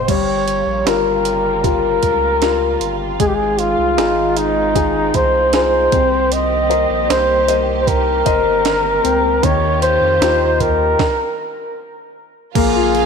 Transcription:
Already playing: grand piano C4 C5 F5 G5
0.08 sub bass G1, string section C#3 G3 A#3 F4, grand piano G3, flugelhorn C#5, kick, closed hi-hat, crash
0.48 closed hi-hat
0.66 sub bass A#1
0.85 sub bass G1, grand piano F4 G4 A#4, flugelhorn A#4, snare, closed hi-hat
1.25 closed hi-hat
1.64 grand piano F4 G4 A#4, flugelhorn A#4, kick, closed hi-hat
2.03 sub bass C#2, kick, closed hi-hat
2.41 grand piano F4 G4 A#4, snare, closed hi-hat
2.80 sub bass G1, closed hi-hat
3.19 sub bass G#1, string section D#3 G#3 C4, grand piano G#3, flugelhorn G#4, kick, closed hi-hat
3.27 flugelhorn G4
3.35 flugelhorn G#4
3.59 flugelhorn F4, closed hi-hat
3.78 sub bass C2
3.97 sub bass G#1, grand piano D#4 F4 G#4, snare, closed hi-hat
4.37 flugelhorn D#4, closed hi-hat
4.75 grand piano D#4 F4 G#4, kick, closed hi-hat
5.14 sub bass C2, flugelhorn C5, kick, closed hi-hat
5.53 grand piano D#4 F4 G#4, flugelhorn C5, snare, closed hi-hat
5.92 sub bass C2, string section D#3 A#3 G4, grand piano C4, kick, closed hi-hat
6.32 flugelhorn D#5, closed hi-hat
6.70 grand piano A#4 C5 D#5, closed hi-hat
6.90 sub bass A#1
7.10 sub bass C2, flugelhorn C5, snare, closed hi-hat
7.48 grand piano A#4 C5 D#5, closed hi-hat
7.81 flugelhorn C5
7.87 flugelhorn A#4, kick, closed hi-hat
8.25 sub bass G1, grand piano A#4 C5 D#5, kick, closed hi-hat
8.65 snare, closed hi-hat
9.04 sub bass C#2, grand piano C4, closed hi-hat
9.43 sub bass D#2, grand piano D#3, string section D#3 F4 G4, flugelhorn C#5, kick, closed hi-hat
9.82 flugelhorn C5, closed hi-hat
10.01 sub bass F2
10.21 sub bass D#2, grand piano D#4 F4 G4, snare, closed hi-hat
10.60 flugelhorn A#4, kick, closed hi-hat
10.99 kick, snare
12.55 sub bass A#1, string section C#3 G#3 A#3 F4, grand piano A#3, violin section F4 F5, flugelhorn G#4, kick, crash, ride
12.75 grand piano F4
12.94 grand piano A#3, ride

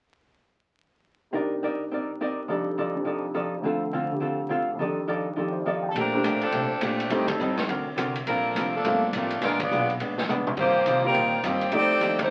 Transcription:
1.31 grand piano C3 G3 D4, hollow-body jazz guitar C4 D#4 A#4
1.35 grand piano D#4 A#4, hollow-body jazz guitar D5
1.63 hollow-body jazz guitar C4 D#4 A#4 D5
1.92 hollow-body jazz guitar C4 D#4 A#4 D5
2.21 hollow-body jazz guitar C4 D#4 A#4 D5
2.48 grand piano F2 C3 G3 D4 D#4 A4, hollow-body jazz guitar F3 D#4 A4 D5
2.78 hollow-body jazz guitar F3 D#4 A4 D5
2.94 grand piano C3 F3 C4 D4 G4
3.05 hollow-body jazz guitar F3 D#4 A4 D5
3.34 hollow-body jazz guitar F3 D#4 A4 D5
3.61 grand piano D2 D3 F3 C4, hollow-body jazz guitar D3 C4
3.66 hollow-body jazz guitar F4 A4, grand piano A4
3.93 hollow-body jazz guitar D3 C4 F4 A4
4.10 grand piano D3 A3 G4
4.20 hollow-body jazz guitar D3 C4 F4 A4
4.49 hollow-body jazz guitar D3 C4 F4 A4
4.75 grand piano F2 D#3, hollow-body jazz guitar F3
4.80 grand piano G3 D4, hollow-body jazz guitar D#4 A4 D5
4.86 grand piano A4
5.08 hollow-body jazz guitar F3 D#4 A4 D5
5.36 grand piano D#3 F3 C4 G4, hollow-body jazz guitar F3 D#4 A4 D5
5.52 grand piano C5
5.60 grand piano D5
5.66 hollow-body jazz guitar F3 D#4 A4 D5, grand piano D#5
5.74 grand piano F5
5.82 grand piano G5
5.88 saxophone section A4, grand piano A5
5.94 upright bass A#2, hollow-body jazz guitar A#2 A3 D4 G4, kick, ride
5.99 saxophone section F3 C4 D4 A#4
6.13 grand piano G3 A3 C4 D4
6.23 upright bass A2, hollow-body jazz guitar A#2 A3 D4 G4, kick, hi-hat pedal, ride
6.41 saxophone section F3 C4 D4 A4, ride
6.52 hollow-body jazz guitar A#2 A3 D4 G4, upright bass C3, kick, ride
6.81 upright bass A#2, hollow-body jazz guitar A#2 A3 D4 G4, saxophone section A3 C4 D4 F4, kick, hi-hat pedal, ride
7.00 ride
7.09 upright bass A2, hollow-body jazz guitar A2 G3 C4 D#4, saxophone section D#3 A3 C4 G4, grand piano G3 A3 C4 D#4, kick, ride
7.19 upright bass G2
7.27 upright bass D#2, saxophone section G3 C4 D#4 A4, kick, ride
7.39 upright bass G2, hollow-body jazz guitar A2 G3 C4 D#4, hi-hat pedal
7.57 snare, ride
7.68 upright bass D2, hollow-body jazz guitar D3 C4 F#4 A#4, kick, ride
7.86 muted upright bass stroke
7.96 upright bass C2, hollow-body jazz guitar D3 C4 F#4 A#4, kick, hi-hat pedal, ride
8.15 ride
8.26 upright bass A#1, hollow-body jazz guitar G2 F3 A#3 C4, saxophone section F3 D4 A4 A#4, kick, ride
8.55 upright bass F1, hollow-body jazz guitar G2 F3 A#3 C4, kick, hi-hat pedal, ride
8.75 saxophone section F3 A#3 D4 A4
8.84 upright bass G1, hollow-body jazz guitar G2 F3 A#3 C4, grand piano A3 A#3 C4 F4, kick, ride
9.12 upright bass A1, hollow-body jazz guitar G2 F3, saxophone section A#3, kick, hi-hat pedal, ride
9.17 saxophone section A3 D4 F4, hollow-body jazz guitar A#3 C4
9.30 ride
9.41 upright bass A#1, hollow-body jazz guitar A#2 G#3 B3 D4, saxophone section G#3 D4 F4 A#4, kick, snare, ride
9.59 saxophone section B3 F4 G#4 D5, kick, ride
9.71 upright bass B1, hollow-body jazz guitar A#2 G#3 B3 D4, grand piano G#3 B3 D4 F4, hi-hat pedal
9.90 ride
9.99 upright bass D#2, hollow-body jazz guitar A#2 G#3 B3 D4, kick, ride
10.18 snare
10.28 upright bass F2, hollow-body jazz guitar A#2 G#3 B3 D4, hi-hat pedal, mid tom
10.47 mid tom
10.57 upright bass G2, hollow-body jazz guitar D#3 G3 C4 F4, saxophone section A#3 F4 G4 C5, kick, crash
10.85 upright bass C3, hollow-body jazz guitar D#3 G3 C4 F4, kick, hi-hat pedal, ride
11.03 grand piano G3 A#3 C4 F4, saxophone section G3 F4 A#4
11.07 saxophone section C4
11.14 upright bass A#2, hollow-body jazz guitar D#3 G3 C4 F4, kick, ride
11.43 upright bass G2, hollow-body jazz guitar D#3 G3 C4 F4, saxophone section F3 A#3 C4 G4, kick, hi-hat pedal, ride
11.61 ride
11.72 upright bass F2, hollow-body jazz guitar F3 A3 D#4 G4, grand piano G3 A3 C4 D#4, saxophone section G4 A4 D5, kick, ride
11.76 saxophone section C4
12.00 upright bass D#2, hollow-body jazz guitar F3 A3 D#4 G4, kick, hi-hat pedal, ride
12.19 saxophone section A3 D#4 G4 C5, kick, ride

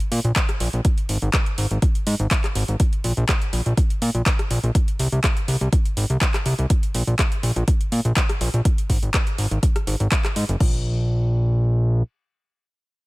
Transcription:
0.00 closed hi-hat
0.12 analog synth bass A#2, open hi-hat
0.24 analog synth bass A#1, closed hi-hat
0.36 kick, clap, closed hi-hat
0.49 cross-stick, closed hi-hat
0.60 analog synth bass A#1, open hi-hat
0.73 analog synth bass A#1, closed hi-hat
0.85 kick, closed hi-hat
0.98 closed hi-hat
1.09 analog synth bass G#1, open hi-hat
1.22 analog synth bass G#1, closed hi-hat
1.33 kick, cross-stick, clap, closed hi-hat
1.46 closed hi-hat
1.58 analog synth bass G#1, open hi-hat
1.71 analog synth bass G#1, closed hi-hat
1.82 kick, closed hi-hat
1.95 closed hi-hat
2.07 analog synth bass G#2, open hi-hat
2.20 analog synth bass G#1, closed hi-hat
2.31 kick, clap, closed hi-hat
2.44 cross-stick, clap, closed hi-hat
2.55 analog synth bass G#1, open hi-hat
2.68 analog synth bass G#1, closed hi-hat
2.80 kick, closed hi-hat
2.93 closed hi-hat
3.04 analog synth bass A#1, open hi-hat
3.17 analog synth bass A#1, closed hi-hat
3.29 kick, cross-stick, clap, closed hi-hat
3.42 closed hi-hat
3.53 analog synth bass A#1, open hi-hat
3.66 analog synth bass A#1, closed hi-hat
3.77 kick, closed hi-hat
3.90 closed hi-hat
4.02 analog synth bass A#2, open hi-hat
4.15 analog synth bass A#1, closed hi-hat
4.26 kick, clap, closed hi-hat
4.39 cross-stick, closed hi-hat
4.51 analog synth bass A#1, open hi-hat
4.64 analog synth bass A#1, closed hi-hat
4.75 kick, closed hi-hat
4.88 closed hi-hat
4.99 analog synth bass C2, open hi-hat
5.12 analog synth bass C2, closed hi-hat
5.24 kick, cross-stick, clap, closed hi-hat
5.37 closed hi-hat
5.48 analog synth bass C2, open hi-hat
5.61 analog synth bass C2, closed hi-hat
5.73 kick, closed hi-hat
5.85 closed hi-hat
5.97 analog synth bass G#1, open hi-hat
6.10 analog synth bass C2, closed hi-hat
6.21 kick, clap, closed hi-hat
6.34 cross-stick, clap, closed hi-hat
6.46 analog synth bass C2, open hi-hat
6.59 analog synth bass C2, closed hi-hat
6.70 kick, closed hi-hat
6.83 closed hi-hat
6.94 analog synth bass A#1, open hi-hat
7.07 analog synth bass A#1, closed hi-hat
7.19 kick, cross-stick, clap, closed hi-hat
7.32 closed hi-hat
7.43 analog synth bass A#1, open hi-hat
7.56 analog synth bass A#1, closed hi-hat
7.68 kick, closed hi-hat
7.81 closed hi-hat
7.92 analog synth bass A#2, open hi-hat
8.05 analog synth bass A#1, closed hi-hat
8.16 kick, clap, closed hi-hat
8.29 cross-stick, closed hi-hat
8.41 analog synth bass A#1, open hi-hat
8.54 analog synth bass A#1, closed hi-hat
8.65 kick, closed hi-hat
8.78 closed hi-hat
8.90 analog synth bass G#1, kick, open hi-hat
9.02 analog synth bass G#1, closed hi-hat
9.14 kick, cross-stick, clap, closed hi-hat
9.27 closed hi-hat
9.38 analog synth bass G#1, open hi-hat
9.51 analog synth bass G#1, closed hi-hat
9.63 kick, closed hi-hat
9.76 cross-stick, closed hi-hat
9.87 analog synth bass G#1, open hi-hat
10.00 analog synth bass G#1, closed hi-hat
10.12 kick, clap, closed hi-hat
10.25 cross-stick, clap, closed hi-hat
10.36 analog synth bass G#2, open hi-hat
10.49 analog synth bass F#1, closed hi-hat
10.60 analog synth bass A#1, kick, crash

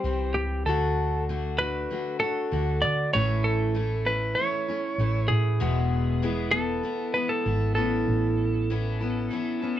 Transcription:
Already playing: electric slide guitar C5
0.04 fingered electric bass C2, steel-string acoustic guitar E3 G3 C4 G4
0.34 fingered electric bass C#2, electric slide guitar G4
0.66 fingered electric bass D2, steel-string acoustic guitar D3 A3 D4 F#4, electric slide guitar A4
1.29 steel-string acoustic guitar D3 A3 D4 F#4
1.58 steel-string acoustic guitar A3 D4 F#4, electric slide guitar B4
1.91 steel-string acoustic guitar D3 A3 D4 F#4
2.20 steel-string acoustic guitar D4 F#4, electric slide guitar A4
2.24 steel-string acoustic guitar A3
2.51 fingered electric bass D2, steel-string acoustic guitar D3 A3 D4 F#4
2.82 fingered electric bass D3, electric slide guitar D5
3.13 fingered electric bass A1, steel-string acoustic guitar A2 E3 A3 C#4 E4, electric slide guitar C#5
3.44 electric slide guitar A4
3.74 steel-string acoustic guitar E3 A3 C#4 E4
4.05 steel-string acoustic guitar A3 C#4 E4, electric slide guitar B4
4.35 steel-string acoustic guitar E3 A3 C#4 E4, electric slide guitar C#5
4.68 steel-string acoustic guitar A3 C#4 E4
4.98 fingered electric bass A1, steel-string acoustic guitar E3 A3 C#4 E4
5.28 fingered electric bass A2, electric slide guitar G#4
5.60 fingered electric bass E1, steel-string acoustic guitar E2 B2 E3 G#3 B3 E4
6.22 steel-string acoustic guitar E3 G#3 B3 E4
6.51 steel-string acoustic guitar E3 B3 E4, electric slide guitar A4
6.83 steel-string acoustic guitar E3 B3 E4
7.14 steel-string acoustic guitar E3 G#3 B3 E4, electric slide guitar B4
7.29 electric slide guitar A4
7.46 fingered electric bass G#1, steel-string acoustic guitar E3 B3 E4
7.75 fingered electric bass A1, steel-string acoustic guitar A2 E3 B3 C#4 E4, electric slide guitar A4
8.08 fingered electric bass A1
8.70 steel-string acoustic guitar E3 B3 C#4 E4
9.01 steel-string acoustic guitar B3 C#4 E4
9.30 steel-string acoustic guitar E3 B3 C#4 E4
9.62 steel-string acoustic guitar B3 C#4 E4

